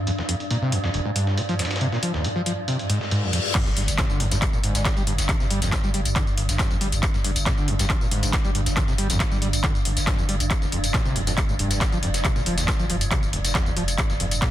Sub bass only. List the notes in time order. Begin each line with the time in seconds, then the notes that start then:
3.66 G1
3.77 G1
3.88 G1
4.10 G1
4.20 G1
4.31 G1
4.53 G1
4.64 G1
4.75 G1
4.97 G1
5.07 G1
5.18 G1
5.40 G1
5.51 G1
5.62 G1
5.84 G1
5.94 G1
6.05 G1
6.27 G1
6.37 G1
6.49 G1
6.71 G1
6.81 G1
6.92 G1
7.14 G1
7.24 G1
7.36 G1
7.58 G1
7.68 G1
7.79 G1
8.01 G1
8.11 G1
8.23 G1
8.45 G1
8.55 G1
8.66 G1
8.88 G1
8.98 G1
9.10 G1
9.31 G1
9.42 G1
9.53 G1
9.75 G1
9.85 G1
9.97 G1
10.18 G1
10.29 G1
10.40 G1
10.62 F1
10.72 F1
10.84 F1
11.05 F1
11.16 F1
11.27 F1
11.49 F1
11.59 F1
11.71 F1
11.92 F1
12.03 F1
12.14 F1
12.36 F1
12.46 F1
12.58 F1
12.79 F1
12.90 F1
13.01 F1
13.23 F1
13.33 F1
13.45 F1
13.66 F1
13.77 F1
13.88 F1
14.10 F1
14.20 F1
14.32 F1